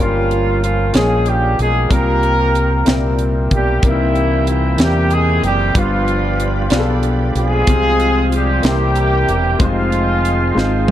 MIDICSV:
0, 0, Header, 1, 7, 480
1, 0, Start_track
1, 0, Tempo, 640342
1, 1431, Time_signature, 6, 3, 24, 8
1, 8180, End_track
2, 0, Start_track
2, 0, Title_t, "Brass ensemble"
2, 0, Program_c, 0, 61
2, 0, Note_on_c, 0, 70, 64
2, 0, Note_on_c, 0, 73, 55
2, 0, Note_on_c, 0, 77, 53
2, 0, Note_on_c, 0, 79, 73
2, 1405, Note_off_c, 0, 77, 0
2, 1412, Note_off_c, 0, 73, 0
2, 1415, Note_off_c, 0, 79, 0
2, 1427, Note_on_c, 0, 77, 59
2, 1430, Note_on_c, 0, 79, 73
2, 1431, Note_on_c, 0, 72, 58
2, 2142, Note_off_c, 0, 77, 0
2, 2144, Note_off_c, 0, 72, 0
2, 2156, Note_on_c, 0, 76, 56
2, 2157, Note_on_c, 0, 72, 56
2, 4282, Note_off_c, 0, 70, 0
2, 4284, Note_off_c, 0, 79, 0
2, 4294, Note_off_c, 0, 72, 0
2, 4294, Note_off_c, 0, 76, 0
2, 4303, Note_on_c, 0, 77, 59
2, 4310, Note_on_c, 0, 71, 65
2, 4310, Note_on_c, 0, 74, 57
2, 4315, Note_on_c, 0, 79, 71
2, 5738, Note_off_c, 0, 74, 0
2, 5739, Note_off_c, 0, 71, 0
2, 5741, Note_off_c, 0, 79, 0
2, 5753, Note_on_c, 0, 72, 60
2, 5755, Note_on_c, 0, 56, 61
2, 6448, Note_off_c, 0, 77, 0
2, 6468, Note_off_c, 0, 56, 0
2, 6469, Note_on_c, 0, 76, 54
2, 6471, Note_on_c, 0, 79, 68
2, 6473, Note_on_c, 0, 70, 63
2, 7185, Note_off_c, 0, 76, 0
2, 7186, Note_off_c, 0, 79, 0
2, 7187, Note_off_c, 0, 70, 0
2, 7198, Note_on_c, 0, 77, 74
2, 7201, Note_on_c, 0, 68, 66
2, 7202, Note_on_c, 0, 75, 58
2, 8180, Note_off_c, 0, 68, 0
2, 8180, Note_off_c, 0, 72, 0
2, 8180, Note_off_c, 0, 75, 0
2, 8180, Note_off_c, 0, 77, 0
2, 8180, End_track
3, 0, Start_track
3, 0, Title_t, "Grand piano"
3, 0, Program_c, 1, 0
3, 0, Note_on_c, 1, 43, 53
3, 0, Note_on_c, 1, 55, 66
3, 0, Note_on_c, 1, 58, 62
3, 0, Note_on_c, 1, 61, 65
3, 0, Note_on_c, 1, 65, 62
3, 0, Note_on_c, 1, 70, 76
3, 129, Control_c, 1, 64, 127
3, 557, Note_off_c, 1, 55, 0
3, 559, Note_off_c, 1, 58, 0
3, 560, Note_off_c, 1, 61, 0
3, 561, Note_off_c, 1, 65, 0
3, 564, Note_off_c, 1, 70, 0
3, 679, Note_off_c, 1, 43, 0
3, 698, Note_on_c, 1, 53, 55
3, 707, Note_on_c, 1, 58, 51
3, 709, Note_on_c, 1, 61, 47
3, 713, Note_on_c, 1, 65, 52
3, 720, Note_on_c, 1, 73, 61
3, 1277, Note_off_c, 1, 53, 0
3, 1281, Note_off_c, 1, 58, 0
3, 1282, Note_off_c, 1, 61, 0
3, 1284, Note_off_c, 1, 65, 0
3, 1288, Note_off_c, 1, 73, 0
3, 1418, Note_on_c, 1, 55, 66
3, 1421, Note_on_c, 1, 58, 63
3, 1424, Note_on_c, 1, 60, 59
3, 1426, Note_on_c, 1, 48, 53
3, 1432, Note_on_c, 1, 65, 63
3, 1436, Note_on_c, 1, 70, 76
3, 1439, Control_c, 1, 64, 0
3, 1589, Control_c, 1, 64, 127
3, 1997, Note_off_c, 1, 55, 0
3, 1999, Note_off_c, 1, 58, 0
3, 2000, Note_off_c, 1, 60, 0
3, 2004, Note_off_c, 1, 65, 0
3, 2006, Note_off_c, 1, 70, 0
3, 2119, Note_off_c, 1, 48, 0
3, 2138, Note_on_c, 1, 55, 65
3, 2144, Note_on_c, 1, 58, 58
3, 2148, Note_on_c, 1, 60, 59
3, 2149, Note_on_c, 1, 46, 59
3, 2151, Note_on_c, 1, 76, 56
3, 2156, Note_on_c, 1, 70, 71
3, 2161, Control_c, 1, 64, 0
3, 2280, Control_c, 1, 64, 127
3, 2717, Note_off_c, 1, 55, 0
3, 2720, Note_off_c, 1, 58, 0
3, 2722, Note_off_c, 1, 60, 0
3, 2724, Note_off_c, 1, 76, 0
3, 2726, Note_off_c, 1, 70, 0
3, 2841, Note_off_c, 1, 46, 0
3, 2865, Note_on_c, 1, 55, 60
3, 2871, Note_on_c, 1, 58, 56
3, 2875, Note_on_c, 1, 60, 62
3, 2880, Note_on_c, 1, 63, 47
3, 2884, Note_on_c, 1, 70, 75
3, 2925, Note_off_c, 1, 63, 0
3, 2929, Note_on_c, 1, 64, 61
3, 3441, Note_off_c, 1, 55, 0
3, 3444, Note_off_c, 1, 58, 0
3, 3446, Note_off_c, 1, 60, 0
3, 3450, Note_off_c, 1, 70, 0
3, 3473, Note_off_c, 1, 64, 0
3, 3578, Note_on_c, 1, 52, 54
3, 3586, Note_on_c, 1, 58, 51
3, 3587, Note_on_c, 1, 48, 49
3, 3588, Note_on_c, 1, 60, 50
3, 3592, Note_on_c, 1, 64, 49
3, 3600, Note_on_c, 1, 70, 58
3, 4158, Note_off_c, 1, 52, 0
3, 4162, Note_off_c, 1, 58, 0
3, 4163, Note_off_c, 1, 60, 0
3, 4165, Note_off_c, 1, 64, 0
3, 4169, Note_off_c, 1, 70, 0
3, 4280, Note_off_c, 1, 48, 0
3, 4301, Note_on_c, 1, 55, 68
3, 4307, Note_on_c, 1, 59, 61
3, 4313, Note_on_c, 1, 62, 61
3, 4314, Note_on_c, 1, 43, 53
3, 4319, Note_on_c, 1, 65, 59
3, 4322, Note_on_c, 1, 71, 71
3, 4324, Control_c, 1, 64, 0
3, 4434, Control_c, 1, 64, 127
3, 4880, Note_off_c, 1, 55, 0
3, 4883, Note_off_c, 1, 59, 0
3, 4886, Note_off_c, 1, 62, 0
3, 4889, Note_off_c, 1, 65, 0
3, 4890, Note_off_c, 1, 71, 0
3, 5004, Note_off_c, 1, 43, 0
3, 5025, Note_on_c, 1, 55, 64
3, 5027, Note_on_c, 1, 59, 60
3, 5031, Note_on_c, 1, 62, 60
3, 5035, Note_on_c, 1, 65, 56
3, 5041, Note_on_c, 1, 68, 55
3, 5087, Note_off_c, 1, 68, 0
3, 5089, Note_on_c, 1, 69, 73
3, 5602, Note_off_c, 1, 55, 0
3, 5603, Note_off_c, 1, 59, 0
3, 5605, Note_off_c, 1, 62, 0
3, 5607, Note_off_c, 1, 65, 0
3, 5634, Note_off_c, 1, 69, 0
3, 5752, Note_on_c, 1, 60, 70
3, 5759, Note_on_c, 1, 48, 58
3, 5761, Note_on_c, 1, 65, 62
3, 5764, Control_c, 1, 64, 0
3, 5766, Note_on_c, 1, 67, 60
3, 5809, Note_off_c, 1, 67, 0
3, 5816, Note_on_c, 1, 68, 80
3, 5873, Control_c, 1, 64, 127
3, 6325, Note_off_c, 1, 60, 0
3, 6330, Note_off_c, 1, 65, 0
3, 6358, Note_off_c, 1, 68, 0
3, 6447, Note_off_c, 1, 48, 0
3, 6466, Note_on_c, 1, 58, 57
3, 6471, Note_on_c, 1, 60, 49
3, 6476, Note_on_c, 1, 48, 53
3, 6476, Note_on_c, 1, 64, 50
3, 6477, Note_on_c, 1, 67, 53
3, 6483, Note_on_c, 1, 72, 60
3, 6486, Control_c, 1, 64, 0
3, 6614, Control_c, 1, 64, 127
3, 7043, Note_off_c, 1, 58, 0
3, 7045, Note_off_c, 1, 60, 0
3, 7048, Note_off_c, 1, 64, 0
3, 7048, Note_off_c, 1, 67, 0
3, 7051, Note_off_c, 1, 72, 0
3, 7166, Note_off_c, 1, 48, 0
3, 7187, Note_on_c, 1, 56, 66
3, 7190, Note_on_c, 1, 60, 63
3, 7192, Note_on_c, 1, 63, 59
3, 7199, Note_on_c, 1, 65, 60
3, 7200, Note_on_c, 1, 72, 76
3, 7206, Control_c, 1, 64, 0
3, 7322, Control_c, 1, 64, 127
3, 7763, Note_off_c, 1, 56, 0
3, 7765, Note_off_c, 1, 60, 0
3, 7766, Note_off_c, 1, 63, 0
3, 7770, Note_off_c, 1, 65, 0
3, 7770, Note_off_c, 1, 72, 0
3, 7908, Note_on_c, 1, 56, 68
3, 7913, Note_on_c, 1, 60, 55
3, 7917, Note_on_c, 1, 63, 59
3, 7923, Note_on_c, 1, 65, 60
3, 7928, Note_on_c, 1, 72, 68
3, 8180, Note_off_c, 1, 56, 0
3, 8180, Note_off_c, 1, 60, 0
3, 8180, Note_off_c, 1, 63, 0
3, 8180, Note_off_c, 1, 65, 0
3, 8180, Note_off_c, 1, 72, 0
3, 8180, End_track
4, 0, Start_track
4, 0, Title_t, "Horn section"
4, 0, Program_c, 2, 61
4, 0, Note_on_c, 2, 53, 67
4, 0, Note_on_c, 2, 58, 60
4, 0, Note_on_c, 2, 65, 72
4, 3, Note_on_c, 2, 61, 60
4, 467, Note_off_c, 2, 53, 0
4, 467, Note_off_c, 2, 65, 0
4, 476, Note_on_c, 2, 53, 68
4, 476, Note_on_c, 2, 65, 74
4, 686, Note_off_c, 2, 58, 0
4, 687, Note_off_c, 2, 61, 0
4, 697, Note_off_c, 2, 53, 0
4, 697, Note_off_c, 2, 65, 0
4, 710, Note_on_c, 2, 56, 73
4, 710, Note_on_c, 2, 68, 79
4, 950, Note_off_c, 2, 56, 0
4, 950, Note_off_c, 2, 68, 0
4, 958, Note_on_c, 2, 55, 71
4, 958, Note_on_c, 2, 67, 77
4, 1195, Note_off_c, 2, 55, 0
4, 1195, Note_off_c, 2, 67, 0
4, 1204, Note_on_c, 2, 56, 73
4, 1204, Note_on_c, 2, 68, 80
4, 1421, Note_off_c, 2, 56, 0
4, 1421, Note_off_c, 2, 68, 0
4, 1440, Note_on_c, 2, 58, 80
4, 1440, Note_on_c, 2, 70, 87
4, 1442, Note_on_c, 2, 65, 66
4, 1442, Note_on_c, 2, 67, 65
4, 2367, Note_off_c, 2, 65, 0
4, 2367, Note_off_c, 2, 67, 0
4, 2396, Note_off_c, 2, 58, 0
4, 2396, Note_off_c, 2, 70, 0
4, 2665, Note_on_c, 2, 55, 68
4, 2665, Note_on_c, 2, 67, 74
4, 2873, Note_off_c, 2, 55, 0
4, 2873, Note_off_c, 2, 67, 0
4, 2900, Note_on_c, 2, 58, 59
4, 2901, Note_on_c, 2, 55, 53
4, 2910, Note_on_c, 2, 52, 67
4, 2910, Note_on_c, 2, 64, 73
4, 3361, Note_off_c, 2, 52, 0
4, 3361, Note_off_c, 2, 64, 0
4, 3370, Note_on_c, 2, 52, 67
4, 3370, Note_on_c, 2, 64, 73
4, 3576, Note_off_c, 2, 58, 0
4, 3577, Note_off_c, 2, 55, 0
4, 3585, Note_off_c, 2, 52, 0
4, 3585, Note_off_c, 2, 64, 0
4, 3613, Note_on_c, 2, 55, 75
4, 3613, Note_on_c, 2, 67, 82
4, 3843, Note_off_c, 2, 55, 0
4, 3843, Note_off_c, 2, 67, 0
4, 3847, Note_on_c, 2, 56, 78
4, 3847, Note_on_c, 2, 68, 85
4, 4080, Note_off_c, 2, 56, 0
4, 4080, Note_off_c, 2, 68, 0
4, 4088, Note_on_c, 2, 55, 75
4, 4088, Note_on_c, 2, 67, 82
4, 4304, Note_off_c, 2, 55, 0
4, 4304, Note_off_c, 2, 67, 0
4, 4327, Note_on_c, 2, 53, 74
4, 4327, Note_on_c, 2, 65, 80
4, 4333, Note_on_c, 2, 59, 57
4, 4333, Note_on_c, 2, 62, 57
4, 5254, Note_off_c, 2, 59, 0
4, 5254, Note_off_c, 2, 62, 0
4, 5281, Note_off_c, 2, 53, 0
4, 5281, Note_off_c, 2, 65, 0
4, 5534, Note_on_c, 2, 56, 93
4, 5534, Note_on_c, 2, 68, 101
4, 5535, Note_on_c, 2, 60, 75
4, 5537, Note_on_c, 2, 65, 74
4, 6215, Note_off_c, 2, 56, 0
4, 6215, Note_off_c, 2, 60, 0
4, 6215, Note_off_c, 2, 68, 0
4, 6216, Note_off_c, 2, 65, 0
4, 6263, Note_on_c, 2, 55, 77
4, 6263, Note_on_c, 2, 67, 84
4, 6483, Note_off_c, 2, 55, 0
4, 6483, Note_off_c, 2, 67, 0
4, 6489, Note_on_c, 2, 58, 64
4, 6491, Note_on_c, 2, 64, 67
4, 6492, Note_on_c, 2, 55, 83
4, 6492, Note_on_c, 2, 67, 90
4, 7173, Note_off_c, 2, 58, 0
4, 7174, Note_off_c, 2, 55, 0
4, 7174, Note_off_c, 2, 64, 0
4, 7174, Note_off_c, 2, 67, 0
4, 7223, Note_on_c, 2, 56, 59
4, 7224, Note_on_c, 2, 60, 54
4, 7225, Note_on_c, 2, 53, 72
4, 7225, Note_on_c, 2, 65, 78
4, 7936, Note_off_c, 2, 53, 0
4, 7936, Note_off_c, 2, 65, 0
4, 7945, Note_on_c, 2, 53, 69
4, 7945, Note_on_c, 2, 65, 75
4, 8154, Note_off_c, 2, 53, 0
4, 8154, Note_off_c, 2, 65, 0
4, 8163, Note_off_c, 2, 60, 0
4, 8180, Note_off_c, 2, 56, 0
4, 8180, End_track
5, 0, Start_track
5, 0, Title_t, "Tonewheel organ"
5, 0, Program_c, 3, 16
5, 2873, Note_on_c, 3, 58, 47
5, 2875, Note_on_c, 3, 65, 50
5, 2876, Note_on_c, 3, 60, 51
5, 2877, Note_on_c, 3, 52, 52
5, 2922, Note_on_c, 3, 79, 57
5, 2923, Note_off_c, 3, 65, 0
5, 4285, Note_off_c, 3, 58, 0
5, 4286, Note_off_c, 3, 60, 0
5, 4287, Note_off_c, 3, 52, 0
5, 4310, Note_off_c, 3, 79, 0
5, 4316, Note_on_c, 3, 62, 53
5, 4318, Note_on_c, 3, 53, 56
5, 4320, Note_on_c, 3, 71, 52
5, 4323, Note_on_c, 3, 55, 61
5, 5727, Note_off_c, 3, 62, 0
5, 5728, Note_off_c, 3, 53, 0
5, 5729, Note_off_c, 3, 71, 0
5, 5731, Note_off_c, 3, 55, 0
5, 5763, Note_on_c, 3, 60, 54
5, 5764, Note_on_c, 3, 56, 51
5, 5764, Note_on_c, 3, 65, 64
5, 5765, Note_on_c, 3, 53, 54
5, 6468, Note_off_c, 3, 60, 0
5, 6477, Note_on_c, 3, 60, 54
5, 6478, Note_on_c, 3, 67, 64
5, 6479, Note_on_c, 3, 51, 46
5, 6480, Note_off_c, 3, 53, 0
5, 6480, Note_off_c, 3, 56, 0
5, 6480, Note_off_c, 3, 65, 0
5, 6480, Note_on_c, 3, 58, 54
5, 6526, Note_off_c, 3, 51, 0
5, 6526, Note_on_c, 3, 52, 58
5, 7189, Note_off_c, 3, 60, 0
5, 7196, Note_on_c, 3, 51, 52
5, 7197, Note_off_c, 3, 67, 0
5, 7197, Note_on_c, 3, 65, 60
5, 7198, Note_off_c, 3, 58, 0
5, 7198, Note_on_c, 3, 60, 51
5, 7199, Note_on_c, 3, 56, 51
5, 7221, Note_off_c, 3, 52, 0
5, 8180, Note_off_c, 3, 51, 0
5, 8180, Note_off_c, 3, 56, 0
5, 8180, Note_off_c, 3, 60, 0
5, 8180, Note_off_c, 3, 65, 0
5, 8180, End_track
6, 0, Start_track
6, 0, Title_t, "Fingered electric bass"
6, 0, Program_c, 4, 33
6, 0, Note_on_c, 4, 31, 84
6, 678, Note_off_c, 4, 31, 0
6, 709, Note_on_c, 4, 34, 73
6, 1160, Note_off_c, 4, 34, 0
6, 1192, Note_on_c, 4, 35, 72
6, 1412, Note_off_c, 4, 35, 0
6, 1429, Note_on_c, 4, 36, 86
6, 2121, Note_off_c, 4, 36, 0
6, 2151, Note_on_c, 4, 36, 70
6, 2601, Note_off_c, 4, 36, 0
6, 2636, Note_on_c, 4, 35, 71
6, 2855, Note_off_c, 4, 35, 0
6, 2870, Note_on_c, 4, 36, 76
6, 3561, Note_off_c, 4, 36, 0
6, 3591, Note_on_c, 4, 40, 71
6, 4042, Note_off_c, 4, 40, 0
6, 4069, Note_on_c, 4, 30, 70
6, 4292, Note_off_c, 4, 30, 0
6, 4309, Note_on_c, 4, 31, 85
6, 5002, Note_off_c, 4, 31, 0
6, 5030, Note_on_c, 4, 35, 72
6, 5482, Note_off_c, 4, 35, 0
6, 5511, Note_on_c, 4, 35, 73
6, 5733, Note_off_c, 4, 35, 0
6, 5753, Note_on_c, 4, 36, 85
6, 6444, Note_off_c, 4, 36, 0
6, 6473, Note_on_c, 4, 36, 77
6, 6924, Note_off_c, 4, 36, 0
6, 6958, Note_on_c, 4, 28, 75
6, 7178, Note_off_c, 4, 28, 0
6, 7196, Note_on_c, 4, 29, 82
6, 7886, Note_off_c, 4, 29, 0
6, 7919, Note_on_c, 4, 32, 74
6, 8180, Note_off_c, 4, 32, 0
6, 8180, End_track
7, 0, Start_track
7, 0, Title_t, "Drums"
7, 233, Note_on_c, 9, 42, 34
7, 308, Note_off_c, 9, 42, 0
7, 477, Note_on_c, 9, 42, 45
7, 552, Note_off_c, 9, 42, 0
7, 703, Note_on_c, 9, 42, 67
7, 716, Note_on_c, 9, 38, 96
7, 778, Note_off_c, 9, 42, 0
7, 791, Note_off_c, 9, 38, 0
7, 942, Note_on_c, 9, 42, 39
7, 1017, Note_off_c, 9, 42, 0
7, 1193, Note_on_c, 9, 42, 40
7, 1268, Note_off_c, 9, 42, 0
7, 1429, Note_on_c, 9, 36, 101
7, 1430, Note_on_c, 9, 42, 79
7, 1504, Note_off_c, 9, 36, 0
7, 1505, Note_off_c, 9, 42, 0
7, 1672, Note_on_c, 9, 42, 33
7, 1747, Note_off_c, 9, 42, 0
7, 1914, Note_on_c, 9, 42, 46
7, 1989, Note_off_c, 9, 42, 0
7, 2145, Note_on_c, 9, 42, 70
7, 2157, Note_on_c, 9, 38, 96
7, 2220, Note_off_c, 9, 42, 0
7, 2232, Note_off_c, 9, 38, 0
7, 2388, Note_on_c, 9, 42, 38
7, 2463, Note_off_c, 9, 42, 0
7, 2631, Note_on_c, 9, 42, 39
7, 2633, Note_on_c, 9, 36, 70
7, 2706, Note_off_c, 9, 42, 0
7, 2708, Note_off_c, 9, 36, 0
7, 2869, Note_on_c, 9, 42, 77
7, 2871, Note_on_c, 9, 36, 100
7, 2944, Note_off_c, 9, 42, 0
7, 2946, Note_off_c, 9, 36, 0
7, 3115, Note_on_c, 9, 42, 36
7, 3190, Note_off_c, 9, 42, 0
7, 3352, Note_on_c, 9, 42, 45
7, 3427, Note_off_c, 9, 42, 0
7, 3585, Note_on_c, 9, 42, 67
7, 3598, Note_on_c, 9, 38, 99
7, 3660, Note_off_c, 9, 42, 0
7, 3673, Note_off_c, 9, 38, 0
7, 3827, Note_on_c, 9, 42, 40
7, 3902, Note_off_c, 9, 42, 0
7, 4074, Note_on_c, 9, 42, 40
7, 4149, Note_off_c, 9, 42, 0
7, 4311, Note_on_c, 9, 36, 104
7, 4311, Note_on_c, 9, 42, 82
7, 4386, Note_off_c, 9, 36, 0
7, 4386, Note_off_c, 9, 42, 0
7, 4555, Note_on_c, 9, 42, 35
7, 4630, Note_off_c, 9, 42, 0
7, 4795, Note_on_c, 9, 42, 49
7, 4870, Note_off_c, 9, 42, 0
7, 5024, Note_on_c, 9, 42, 65
7, 5036, Note_on_c, 9, 38, 93
7, 5099, Note_off_c, 9, 42, 0
7, 5111, Note_off_c, 9, 38, 0
7, 5269, Note_on_c, 9, 42, 40
7, 5344, Note_off_c, 9, 42, 0
7, 5513, Note_on_c, 9, 42, 43
7, 5588, Note_off_c, 9, 42, 0
7, 5750, Note_on_c, 9, 42, 80
7, 5753, Note_on_c, 9, 36, 96
7, 5825, Note_off_c, 9, 42, 0
7, 5827, Note_off_c, 9, 36, 0
7, 5994, Note_on_c, 9, 42, 38
7, 6069, Note_off_c, 9, 42, 0
7, 6239, Note_on_c, 9, 42, 47
7, 6314, Note_off_c, 9, 42, 0
7, 6471, Note_on_c, 9, 42, 66
7, 6484, Note_on_c, 9, 38, 99
7, 6546, Note_off_c, 9, 42, 0
7, 6558, Note_off_c, 9, 38, 0
7, 6713, Note_on_c, 9, 42, 41
7, 6788, Note_off_c, 9, 42, 0
7, 6960, Note_on_c, 9, 42, 43
7, 7035, Note_off_c, 9, 42, 0
7, 7194, Note_on_c, 9, 42, 78
7, 7196, Note_on_c, 9, 36, 104
7, 7269, Note_off_c, 9, 42, 0
7, 7271, Note_off_c, 9, 36, 0
7, 7439, Note_on_c, 9, 42, 36
7, 7514, Note_off_c, 9, 42, 0
7, 7684, Note_on_c, 9, 42, 47
7, 7759, Note_off_c, 9, 42, 0
7, 7929, Note_on_c, 9, 38, 46
7, 8004, Note_off_c, 9, 38, 0
7, 8180, End_track
0, 0, End_of_file